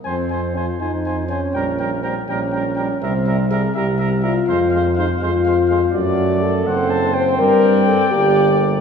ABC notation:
X:1
M:6/8
L:1/8
Q:3/8=82
K:Fm
V:1 name="Trumpet"
a a a a a a | g g g g g g | =e e e e e e | f f f f f f |
[K:Gm] d3 ^f a g- | g6 |]
V:2 name="Trumpet"
c c c c c c | B B B B B B | B B B B B B | c c c c c c |
[K:Gm] d3 c3 | d6 |]
V:3 name="French horn"
C2 F E2 D- | D2 C D3 | C2 A G2 F- | F2 E F3 |
[K:Gm] ^F2 A3 c | B2 A G2 z |]
V:4 name="Trombone" clef=bass
F, F, F, F, F, F, | G, G, G, G, G, G, | G, G, G, G, G, G, | A, A, A, A, A, A, |
[K:Gm] A,3 C3- | C3 B,3 |]
V:5 name="Tuba" clef=bass
F,,3 F,,3 | B,,,3 B,,,3 | C,,3 C,,3 | F,,3 F,,3 |
[K:Gm] ^F,,3 ^F,,,3 | G,,3 G,,,3 |]